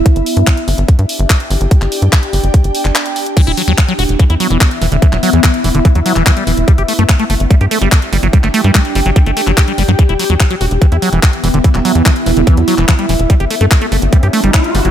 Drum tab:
CC |----------------|----------------|x---------------|----------------|
HH |xxoxxxoxxxoxxxox|xxoxxxoxxxoxxxox|xxoxxxoxxxoxxxox|xxoxxxoxxxoxxxox|
CP |----x-------x---|-x--x------xx---|----x-------x---|-x--x------xx---|
BD |o---o---o---o---|o---o---o-------|o---o---o---o---|o---o---o---o---|

CC |----------------|----------------|----------------|----------------|
HH |xxoxxxoxxxoxxxox|xxoxxxoxxxoxxxox|xxoxxxoxxxoxxxox|xxoxxxoxxxoxxxox|
CP |----x-------x---|-x--x------xx---|----x-------x---|-x--x------xx---|
BD |o---o---o---o---|o---o---o---o---|o---o---o---o---|o---o---o---o---|

CC |----------------|
HH |xxoxxxoxxxoxxxox|
CP |----x-------x---|
BD |o---o---o---o---|